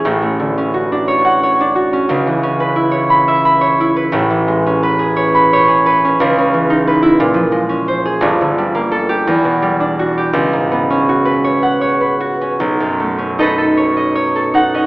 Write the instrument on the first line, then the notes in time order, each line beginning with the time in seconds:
harp
Already playing: A3 C#4 C#5
0.05 A1 A2
0.22 A3
0.39 D3
0.58 C#4
0.74 F#4
0.92 D4
1.08 C#5
1.25 F#5
1.43 C#5
1.61 D4
1.75 F#4
1.93 C#4
2.09 C#2 C#3
2.27 E3
2.43 C#4
2.60 B4
2.76 E4
2.91 C#5
3.10 B5
3.28 E5
3.45 B5
3.61 C#5
3.80 E4
3.96 B4
4.12 A1 A2
4.30 E3
4.48 G#3
4.66 C#4
4.83 B4
4.99 G#4
5.16 C#5
5.35 B5
5.53 C#5
5.68 G#4
5.86 B4
6.05 C#4
6.20 C#2 C#3
6.38 C#4
6.54 E3
6.70 D#4
6.87 B4
7.02 E4
7.20 A#2
7.34 F3
7.52 G#3
7.69 C#4
7.88 C5
8.05 G#4
8.21 G1 G2
8.41 D3
8.58 G3
8.75 A#3
8.92 A4
9.09 G4
9.27 E2
9.44 B2
9.62 G3
9.80 D4
9.99 F#4
10.18 G4
10.33 C#2
10.53 G#2
10.71 B3
10.90 C#4
11.09 F#4
11.25 B4
11.44 C#5
11.63 F#5
11.81 C#5
12.01 B4
12.20 F#4
12.41 C#4
12.60 B1
12.80 F#2
13.00 A3
13.18 C#4
13.39 D#4 A4 B4 D#5
13.58 A4
13.77 C#5
13.97 D#5
14.15 C#5
14.35 A4
14.54 D#4 F#5
14.74 C#4 D#5